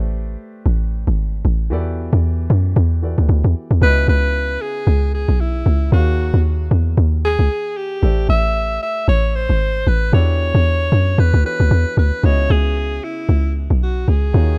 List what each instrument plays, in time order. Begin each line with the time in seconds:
Already playing: log drum bass A1, grand piano A3 G4 B4 C5 D5
0.66 log drum bass A1
1.07 log drum bass G#1
1.45 log drum bass A1
1.70 log drum bass E2, grand piano E3 B3 F#4 G4 A4 D5
2.13 log drum bass E2
2.50 log drum bass F#2
2.76 log drum bass E2
3.02 grand piano E3 B3 F#4 G4 A4 D5
3.18 log drum bass D2
3.29 log drum bass D2
3.44 log drum bass E2
3.71 log drum bass E2
3.81 log drum bass C#2, grand piano C#3 B3 E4 F#4 D#5, alto saxophone B4
4.08 log drum bass C#2, alto saxophone B4
4.61 alto saxophone G#4
4.87 log drum bass C#2
5.14 alto saxophone G#4
5.28 log drum bass B1
5.40 alto saxophone E4
5.66 log drum bass C#2
5.91 log drum bass D#2, grand piano D#3 A#3 F#4 G#4 C#5 F5, alto saxophone F#4
6.34 log drum bass D#2
6.71 log drum bass E2
6.97 log drum bass D#2
7.25 alto saxophone G#4
7.39 log drum bass C#2
7.77 alto saxophone G4
8.02 log drum bass A1, grand piano A3 G4 A4 C5 D5
8.29 log drum bass A1, alto saxophone E5
8.82 alto saxophone E5
9.08 log drum bass A1, alto saxophone C#5
9.35 alto saxophone C5
9.49 log drum bass G#1
9.87 log drum bass A1, alto saxophone B4
10.12 log drum bass E2, grand piano E3 B3 D4 F#4 G4 A4, alto saxophone C#5
10.55 log drum bass E2
10.92 log drum bass F#2
11.18 log drum bass E2, alto saxophone B4
11.34 log drum bass D2
11.44 grand piano E3 B3 F#4 G4 A4 C#5, alto saxophone B4
11.60 log drum bass D2
11.71 log drum bass E2
11.97 log drum bass D2, alto saxophone B4
12.23 log drum bass C#2, grand piano C#3 B3 E4 F#4 D#5, alto saxophone C#5
12.50 log drum bass C#2, alto saxophone G#4
13.04 alto saxophone E4
13.29 log drum bass C#2
13.70 log drum bass B1
13.83 alto saxophone F#4
14.08 log drum bass C#2, alto saxophone G#4
14.33 log drum bass D#2, grand piano D#3 D#4 F4 F#4 G#4 C#5